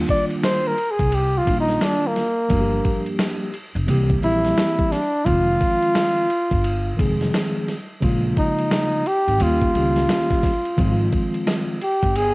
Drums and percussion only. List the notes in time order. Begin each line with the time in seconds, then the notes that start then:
0.09 kick, ride
0.30 ride
0.43 snare, hi-hat pedal, ride
0.78 ride
0.99 kick, ride
1.12 ride
1.47 kick, ride
1.68 snare, ride
1.81 snare, hi-hat pedal, ride
2.16 snare, ride
2.50 kick, ride
2.85 kick, ride
3.06 ride
3.19 snare, hi-hat pedal, ride
3.54 ride
3.76 ride
3.88 ride
4.10 kick
4.23 ride
4.44 snare, ride
4.58 snare, hi-hat pedal, ride
4.79 kick
4.92 snare, ride
5.26 kick, ride
5.61 kick, ride
5.83 ride
5.95 snare, hi-hat pedal, ride
6.30 ride
6.51 kick, ride
6.64 ride
6.99 kick, ride
7.21 snare, ride
7.34 snare, hi-hat pedal, ride
7.68 snare, ride
8.02 kick, ride
8.37 kick, ride
8.58 ride
8.71 snare, hi-hat pedal, ride
9.06 ride
9.28 ride
9.40 ride
9.62 kick
9.75 ride
9.96 snare, ride
10.09 snare, hi-hat pedal, ride
10.30 kick, snare
10.43 kick, snare, ride
10.65 ride
10.78 kick, ride
11.12 kick, ride
11.34 ride
11.47 snare, hi-hat pedal, ride
11.81 ride
12.03 kick, ride
12.15 ride